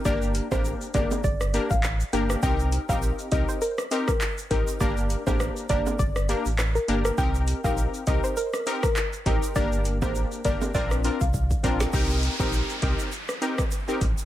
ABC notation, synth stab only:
X:1
M:4/4
L:1/16
Q:"Swing 16ths" 1/4=101
K:Cdor
V:1 name="Synth stab"
[B,DGB]3 [B,DGB]3 [B,DGB]2 z2 [B,DGB] z3 [B,DGB]2 | [CEGB]3 [CEGB]3 [CEGB]2 z2 [CEGB] z3 [CEGB]2 | [B,DGB]3 [B,DGB]3 [B,DGB]2 z2 [B,DGB] z3 [B,DGB]2 | [CEGB]3 [CEGB]3 [CEGB]2 z2 [CEGB] z3 [CEGB]2 |
[B,DGB]3 [B,DGB]3 [B,DGB]2 [CDFB]2 [CDFB] z3 [CDFB]2 | [CEGB]3 [CEGB]3 [CEGB]2 z2 [CEGB] z2 [CEGB] z2 |]